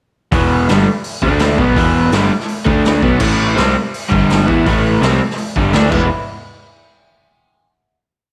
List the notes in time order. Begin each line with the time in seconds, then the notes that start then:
0.32 E1 E2 B2 E3, kick, open hi-hat
0.69 G1 G2 D3 G3, snare, open hi-hat
1.04 open hi-hat
1.22 D2 D3 A3 D4, kick
1.39 snare, open hi-hat
1.58 B1 B2 F#3 B3, kick
1.76 E1 E2 B2 E3, kick, open hi-hat
2.11 G1 G2 D3 G3, snare, open hi-hat
2.40 snare
2.48 open hi-hat
2.65 D2 D3 A3 D4, kick
2.85 snare, open hi-hat
3.02 B1 B2 F#3 B3, kick
3.20 A1 A2 E3 A3, kick, crash
3.55 C2 C3 G3 C4, snare, open hi-hat
3.94 open hi-hat
4.09 G1 G2 D3 G3, kick
4.30 snare, open hi-hat
4.47 E2 E3 B3 E4, kick
4.66 A1 A2 E3 A3, kick, open hi-hat
5.01 C2 C3 G3 C4, snare, open hi-hat
5.30 snare
5.38 open hi-hat
5.56 G1 G2 D3 G3, kick
5.73 D2 D3 A3 D4, snare, open hi-hat
5.89 E1 E3 G#3 B3 E4, kick, crash